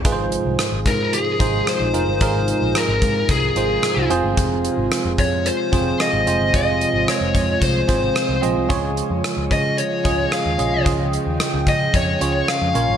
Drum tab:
HH |xxxxxxxx|xxxxxxxx|xxxxxxxx|xxxxxxxx|
SD |--r---r-|--r---r-|--r---r-|--r---r-|
BD |o--o-o--|o--oo---|o--o-o--|o--ooo--|

HH |xxxxxxxx|xxxxxxxx|
SD |--r---r-|--r---r-|
BD |o--o-o--|o--oo---|